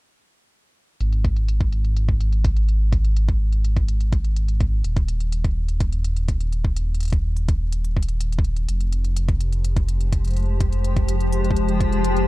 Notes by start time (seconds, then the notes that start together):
1.01 G#1, closed hi-hat
1.13 closed hi-hat
1.25 kick, closed hi-hat
1.36 closed hi-hat
1.48 closed hi-hat
1.60 kick, closed hi-hat
1.73 closed hi-hat
1.85 closed hi-hat
1.97 closed hi-hat
2.09 kick
2.21 closed hi-hat
2.33 closed hi-hat
2.44 kick, closed hi-hat
2.57 closed hi-hat
2.69 closed hi-hat
2.93 kick, closed hi-hat
3.05 closed hi-hat
3.17 closed hi-hat
3.29 kick, closed hi-hat
3.53 closed hi-hat
3.65 closed hi-hat
3.77 kick, closed hi-hat
3.88 closed hi-hat
4.00 closed hi-hat
4.12 kick, closed hi-hat
4.25 closed hi-hat
4.36 closed hi-hat
4.48 closed hi-hat
4.60 kick, closed hi-hat
4.84 D#1, closed hi-hat
4.96 kick, closed hi-hat
5.08 closed hi-hat
5.20 closed hi-hat
5.32 closed hi-hat
5.44 kick, closed hi-hat
5.69 closed hi-hat
5.80 kick, closed hi-hat
5.92 closed hi-hat
6.04 closed hi-hat
6.17 closed hi-hat
6.28 kick, closed hi-hat
6.41 closed hi-hat
6.53 closed hi-hat
6.65 kick
6.76 closed hi-hat
6.95 closed hi-hat
7.00 closed hi-hat
7.03 closed hi-hat
7.05 closed hi-hat
7.08 closed hi-hat
7.10 kick, closed hi-hat
7.13 closed hi-hat
7.37 closed hi-hat
7.49 kick, closed hi-hat
7.72 closed hi-hat
7.85 closed hi-hat
7.97 kick
8.03 closed hi-hat
8.09 closed hi-hat
8.21 closed hi-hat
8.32 closed hi-hat
8.39 kick
8.44 closed hi-hat
8.56 closed hi-hat
8.69 F1 F3 G#3 G4 C5, closed hi-hat
8.81 closed hi-hat
8.93 closed hi-hat
9.04 closed hi-hat
9.16 closed hi-hat
9.28 kick, closed hi-hat
9.41 closed hi-hat
9.53 closed hi-hat
9.65 closed hi-hat
9.76 kick, closed hi-hat
9.89 closed hi-hat
10.01 closed hi-hat
10.13 kick, closed hi-hat
10.25 closed hi-hat
10.28 closed hi-hat
10.31 closed hi-hat
10.33 closed hi-hat
10.37 closed hi-hat
10.42 closed hi-hat
10.60 kick, closed hi-hat
10.72 closed hi-hat
10.84 closed hi-hat
10.96 kick, closed hi-hat
11.08 closed hi-hat
11.20 closed hi-hat
11.32 closed hi-hat
11.44 closed hi-hat
11.51 kick
11.56 closed hi-hat
11.69 closed hi-hat
11.81 kick, closed hi-hat
11.93 closed hi-hat
12.04 closed hi-hat
12.16 closed hi-hat